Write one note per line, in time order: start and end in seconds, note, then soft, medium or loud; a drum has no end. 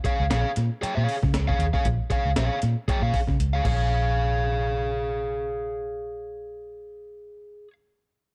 0.04 0.23 G#4 medium
0.04 0.24 C#5 medium
0.04 0.24 F5 loud
0.04 kick medium
0.04 closed hi-hat medium
0.20 0.29 C#2 medium
0.30 0.43 A#1 medium
0.30 0.49 G#4 medium
0.30 0.49 C#5 medium
0.30 0.50 F5 loud
0.30 snare loud
0.30 closed hi-hat loud
0.56 0.68 A#2 medium
0.56 snare soft
0.56 closed hi-hat medium
0.82 0.96 G#4 medium
0.82 0.95 C#5 medium
0.82 0.95 G5 medium
0.82 muted fingered electric bass stroke soft
0.82 closed hi-hat medium
0.95 1.06 A#2 medium
0.95 1.16 G#4 medium
0.95 1.16 C#5 medium
0.95 1.15 F5 medium
1.09 open hi-hat medium
1.23 1.32 C#3 loud
1.23 kick medium
1.23 snare soft
1.33 1.54 C#2 medium
1.33 snare loud
1.33 closed hi-hat medium
1.48 1.65 G#4 medium
1.48 1.65 C#5 medium
1.48 1.64 F5 medium
1.48 kick medium
1.59 1.71 D#2 medium
1.59 closed hi-hat medium
1.73 1.87 G#4 soft
1.73 1.86 C#5 medium
1.73 1.86 F5 medium
1.73 kick medium
1.73 snare soft
1.85 1.97 A#1 loud
1.85 kick loud
1.85 closed hi-hat medium
2.10 2.29 G#4 medium
2.10 2.29 C#5 medium
2.10 2.30 F5 medium
2.10 kick medium
2.10 closed hi-hat medium
2.25 2.34 C#2 medium
2.36 2.48 A#1 medium
2.36 2.57 G#4 medium
2.36 2.58 C#5 medium
2.36 2.58 F5 medium
2.36 snare loud
2.36 closed hi-hat loud
2.62 2.74 A#2 medium
2.62 snare soft
2.62 closed hi-hat medium
2.88 3.03 G#4 medium
2.88 3.02 C#5 medium
2.88 3.02 G5 medium
2.88 muted fingered electric bass stroke soft
2.88 kick loud
2.88 closed hi-hat medium
3.02 3.11 A#2 medium
3.02 3.20 G#4 medium
3.02 3.19 C#5 medium
3.02 3.19 F5 medium
3.14 kick medium
3.14 open hi-hat medium
3.27 3.37 C#3 medium
3.27 kick medium
3.27 snare soft
3.39 3.60 C#2 loud
3.39 closed hi-hat medium
3.53 3.62 G#4 medium
3.53 3.65 C#5 medium
3.53 3.65 F5 medium
3.63 7.65 A#1 medium
3.63 7.68 G#4 medium
3.63 7.70 C#5 medium
3.63 kick loud
3.63 crash medium
3.68 7.73 F5 medium